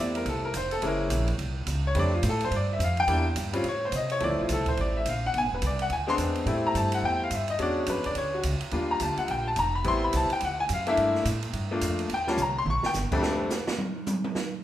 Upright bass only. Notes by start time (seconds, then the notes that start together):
Already playing: E2
0.25 C2
0.54 F1
0.82 F#1
1.10 A#1
1.38 C2
1.66 C#2
1.95 F2
2.23 A2
2.51 G2
2.79 F2
3.07 E2
3.36 G2
3.64 A2
3.92 C3
4.21 D2
4.31 C2
4.40 A1
4.49 C2
4.78 A1
5.06 A#1
5.34 B1
5.43 G#1
5.53 E1
5.62 C2
5.90 D2
6.18 E2
6.46 A2
6.75 G2
7.02 E2
7.31 G2
7.59 E2
7.87 F#2
7.96 E2
8.06 D2
8.15 D2
8.44 C#2
8.61 muted upright bass stroke
8.72 D#2
9.00 D2
9.17 muted upright bass stroke
9.29 A#1
9.56 F1
9.85 A1
10.13 C2
10.31 muted upright bass stroke
10.42 D2
10.70 F#2
10.97 G2
11.25 A2
11.53 G2
11.81 F2
12.09 D#2
12.37 C2
12.66 A#1
12.83 muted upright bass stroke
12.95 G1
13.11 muted upright bass stroke